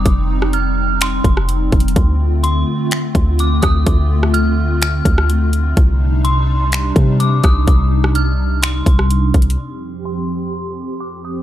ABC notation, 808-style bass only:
X:1
M:4/4
L:1/8
Q:1/4=126
K:Fmix
V:1 name="808-style bass" clef=bass
F,,,4- F,,, F,,,2 F,,, | D,,3 z2 D,,2 D,, | D,,4- D,, D,,3 | C,,4- C,, C,2 C,, |
C,,4- C,, C,,2 C,, | z8 |]